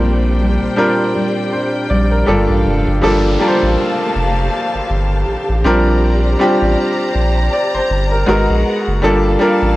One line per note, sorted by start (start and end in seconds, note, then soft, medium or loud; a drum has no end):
0.00 0.58 A#1 loud
0.00 2.27 A#2 medium
0.00 0.40 G3 medium
0.00 0.68 G3 medium
0.00 0.77 A#3 medium
0.00 0.68 C4 medium
0.00 0.69 D4 medium
0.00 0.43 F4 medium
0.00 0.69 F4 medium
0.00 2.99 G4 medium
0.00 0.69 A#4 medium
0.00 2.25 C5 medium
0.00 2.99 D5 medium
0.00 2.99 G5 medium
0.00 swell medium
0.40 1.15 G3 medium
0.62 0.69 A#1 soft
0.76 2.15 G3 medium
0.76 2.15 C4 medium
0.76 2.36 C4 medium
0.76 2.15 D4 medium
0.76 2.16 F4 medium
0.76 1.16 A#4 loud
1.15 1.90 G3 medium
1.52 3.62 D4 medium
1.52 1.88 C5 medium
1.90 2.24 A#1 medium
1.90 2.65 G3 medium
1.90 2.11 D5 medium
2.12 2.47 A#4 medium
2.26 2.47 G1 loud
2.26 3.11 G2 medium
2.26 2.96 G3 medium
2.26 2.96 A#3 medium
2.26 2.96 D4 medium
2.26 2.97 F4 medium
2.26 2.97 A4 medium
2.26 3.02 F5 medium
2.50 2.64 A1 medium
2.65 2.85 F1 medium
2.65 3.62 F3 medium
2.88 3.01 F#1 medium
3.02 3.37 G1 loud
3.02 3.37 G3 medium
3.02 3.37 A#3 medium
3.02 5.63 A#3 medium
3.02 3.37 D4 medium
3.02 3.37 F4 medium
3.02 8.24 G4 medium
3.02 3.38 A4 loud
3.02 5.63 F5 medium
3.02 5.63 A5 medium
3.02 downlifter medium
3.39 4.77 G3 medium
3.39 4.78 A#3 medium
3.39 4.78 D4 medium
3.39 4.78 F4 medium
3.39 3.48 A#4 medium
3.48 4.82 C5 medium
3.63 3.76 A1 medium
4.15 4.49 F1 medium
4.75 4.81 G1 soft
4.90 5.24 G1 loud
5.27 5.36 A1 medium
5.49 5.63 A1 medium
5.64 6.36 A#1 loud
5.64 6.34 G3 medium
5.64 6.34 C4 medium
5.64 6.34 D4 medium
5.64 6.34 F4 medium
5.64 6.35 A#4 loud
5.64 8.25 C5 medium
5.64 8.25 D5 medium
5.64 9.00 A#5 medium
6.39 7.77 G3 medium
6.39 7.78 C4 medium
6.39 7.78 D4 medium
6.39 7.78 F4 medium
6.39 7.78 G4 loud
6.62 6.76 A1 medium
7.15 7.49 A#1 medium
7.53 7.73 D5 medium
7.74 7.81 G1 soft
7.74 8.10 C5 medium
7.90 8.24 G1 medium
8.12 8.27 A#4 medium
8.26 8.47 G#1 loud
8.26 8.96 G#3 medium
8.26 8.96 B3 medium
8.26 9.02 B3 medium
8.26 8.96 D#4 medium
8.26 8.97 F#4 medium
8.26 9.02 G#4 medium
8.26 8.97 A#4 loud
8.26 9.02 F#5 medium
8.50 8.64 A#1 loud
8.88 9.01 F#1 medium
9.02 9.37 G1 loud
9.02 9.37 G3 medium
9.02 9.76 A#3 medium
9.02 9.37 A#3 medium
9.02 9.37 D4 medium
9.02 9.37 F4 medium
9.02 9.76 G4 medium
9.02 9.38 A4 loud
9.02 9.76 F5 medium
9.02 9.76 A5 medium
9.39 9.76 G3 medium
9.39 9.76 A#3 medium
9.39 9.76 D4 medium
9.39 9.76 F4 medium
9.39 9.76 A#4 loud
9.62 9.76 A1 medium